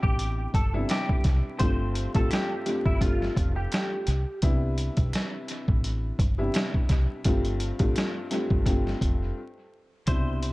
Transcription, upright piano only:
0.00 0.57 B2 medium
0.00 0.57 C3 loud
0.00 0.57 G3 medium
0.00 0.57 D4 medium
0.00 0.57 E4 loud
0.73 1.54 C3 loud
0.73 1.54 G3 medium
0.73 1.54 B3 medium
0.73 1.54 D4 medium
0.73 1.54 E4 loud
1.59 2.10 G2 medium
1.59 2.10 G3 medium
1.59 2.10 A3 loud
1.59 2.10 C4 medium
1.59 2.10 F4 loud
2.14 2.62 G2 medium
2.14 2.62 G3 medium
2.14 2.62 A3 medium
2.14 2.63 C4 medium
2.14 2.63 F4 loud
2.66 2.99 G2 loud
2.66 2.99 G3 medium
2.66 2.99 A3 medium
2.66 2.99 C4 medium
2.66 2.99 F4 loud
3.01 4.00 G2 medium
3.01 4.00 G3 medium
3.01 4.00 A3 medium
3.01 4.00 C4 medium
3.01 4.00 F4 loud
4.42 6.21 C3 loud
4.42 6.21 G3 medium
4.42 6.22 B3 medium
4.42 6.22 D4 medium
4.42 6.22 E4 loud
6.38 7.19 C3 loud
6.38 7.19 G3 loud
6.38 7.19 B3 medium
6.38 7.19 D4 medium
6.38 7.19 E4 loud
7.25 7.75 G2 loud
7.25 7.75 G3 medium
7.25 7.75 A3 loud
7.25 7.75 C4 medium
7.25 7.75 F4 loud
7.79 8.27 G2 loud
7.79 8.27 G3 medium
7.79 8.27 A3 medium
7.79 8.27 C4 medium
7.79 8.27 F4 loud
8.31 8.64 G2 loud
8.31 8.64 G3 medium
8.31 8.64 A3 medium
8.31 8.64 C4 medium
8.31 8.64 F4 loud
8.66 9.37 G2 medium
8.66 9.37 G3 medium
8.66 9.37 A3 medium
8.66 9.37 C4 medium
8.66 9.37 F4 loud
10.07 10.53 B2 medium
10.07 10.53 C3 loud
10.07 10.53 G3 medium
10.07 10.53 D4 medium
10.07 10.53 E4 loud

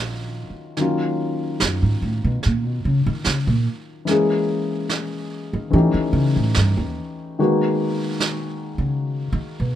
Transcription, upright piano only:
0.00 0.75 D#3 soft
0.00 0.76 F#3 soft
0.00 0.77 C#4 soft
0.00 0.78 F4 medium
0.77 4.08 D#3 soft
0.77 4.09 F#3 soft
0.77 4.06 A#3 soft
0.77 4.07 C#4 soft
0.81 4.11 F4 soft
4.05 5.69 E3 soft
4.05 5.73 G#3 soft
4.05 5.73 A#3 soft
4.05 5.72 C#4 soft
4.11 5.75 G#4 soft
5.70 7.37 E3 soft
5.70 7.37 A3 soft
5.70 7.38 C#4 soft
5.70 7.38 D#4 soft
5.75 7.39 G4 soft
7.39 9.75 D#3 soft
7.39 9.75 G#3 soft
7.39 9.75 A#3 soft
7.39 9.75 B3 soft
7.39 9.75 F#4 soft

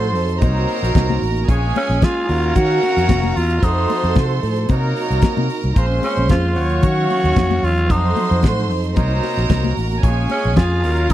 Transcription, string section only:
0.00 0.41 F3 medium
0.00 0.39 F#3 medium
0.00 0.39 D#4 medium
0.00 0.41 A4 medium
0.40 1.47 C3 medium
0.40 2.27 A#3 medium
0.40 1.47 D#4 medium
0.40 1.47 F#4 medium
1.48 2.28 G#3 medium
1.48 2.28 C#4 medium
2.29 3.61 D#3 medium
2.29 3.61 C#4 medium
2.29 3.61 F#4 loud
2.29 3.61 F5 medium
3.61 4.68 F3 medium
3.61 4.67 D#4 medium
3.61 4.67 F#4 medium
3.61 4.68 A4 medium
4.68 5.75 C3 medium
4.68 5.74 A#3 medium
4.68 5.75 D#4 medium
4.68 5.75 F#4 medium
5.75 6.55 G#3 medium
5.75 6.55 A#3 medium
5.75 6.54 C#4 medium
6.55 7.88 D#3 medium
6.55 8.93 F#3 loud
6.55 7.88 C#4 medium
6.55 7.88 F5 medium
7.89 8.95 F3 medium
7.89 10.01 D#4 medium
7.89 8.95 A4 medium
8.95 10.02 C3 medium
8.95 10.81 A#3 medium
8.95 10.02 F#4 medium
10.02 10.82 G#3 medium
10.02 10.81 C#4 loud
10.82 11.13 D#3 medium
10.82 11.13 F#3 medium
10.82 11.13 C#4 medium
10.82 11.13 F5 medium

